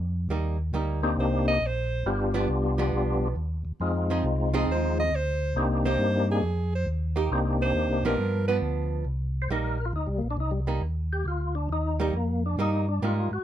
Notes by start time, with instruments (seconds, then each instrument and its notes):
Already playing: tonewheel organ F2
0.29 tonewheel organ D#2, hollow-body jazz guitar G3 A#3 D#4
0.73 tonewheel organ D2, hollow-body jazz guitar G3 A#3 D#4
1.03 tonewheel organ A#3 C4 D4 D#4 G4
1.17 tonewheel organ C2, alto saxophone C5
1.48 alto saxophone D#5
1.61 tonewheel organ A#1
1.66 alto saxophone C5
2.05 tonewheel organ G1 G3 B3 D4 F4 G4
2.34 hollow-body jazz guitar F3 B3 D4
2.48 tonewheel organ C2
2.78 hollow-body jazz guitar F3 B3 D4
2.92 tonewheel organ B1
3.36 tonewheel organ D#2
3.65 tonewheel organ D#2
3.80 tonewheel organ F2 G#3 C4 D#4 F4
4.10 hollow-body jazz guitar F3 C4 D#4 G#4
4.23 tonewheel organ C2
4.54 hollow-body jazz guitar F3 C4 D#4 G#4
4.67 tonewheel organ D#2
4.72 alto saxophone C5
5.00 alto saxophone D#5
5.11 tonewheel organ D2
5.15 alto saxophone C5
5.55 tonewheel organ C2 A#3 C4 D4 D#4 G4
5.85 hollow-body jazz guitar A#3 D#4 G4, alto saxophone C5
5.98 tonewheel organ G2
6.32 alto saxophone G#4
6.43 tonewheel organ F2
6.75 alto saxophone C5
6.87 tonewheel organ D#2
7.16 hollow-body jazz guitar A#3 D#4 G4
7.31 tonewheel organ C2 A#3 C4 D4 D#4 G4
7.62 alto saxophone C5
7.74 tonewheel organ D#2
7.89 tonewheel organ C2
8.03 tonewheel organ A#1, hollow-body jazz guitar F3 B3 D4, alto saxophone A#4
8.18 tonewheel organ G2
8.48 hollow-body jazz guitar F3 B3 D4, alto saxophone B4
8.61 tonewheel organ D2
9.05 tonewheel organ C2
9.42 tonewheel organ C5
9.49 tonewheel organ A#1 A#4, hollow-body jazz guitar G3 A#3 D#4
9.86 tonewheel organ F4
9.93 tonewheel organ D2 D#4
10.07 tonewheel organ C2 G3
10.18 tonewheel organ A#3
10.22 tonewheel organ A#1
10.31 tonewheel organ D4
10.37 tonewheel organ C2 D#4
10.51 tonewheel organ G3
10.67 hollow-body jazz guitar G3 A#3 D#4
10.81 tonewheel organ D#2
11.13 tonewheel organ G4
11.25 tonewheel organ D2 F4
11.55 tonewheel organ D4
11.69 tonewheel organ D#2 D#4
12.00 hollow-body jazz guitar G3 A#3 D#4, tonewheel organ G3
12.13 tonewheel organ F2 A#3
12.46 tonewheel organ D4
12.57 tonewheel organ G2 D#4, hollow-body jazz guitar G3 A#3 D#4
12.89 tonewheel organ D4
13.02 tonewheel organ G#2 F4, hollow-body jazz guitar G3 A#3 D#4
13.31 tonewheel organ G#2 F#4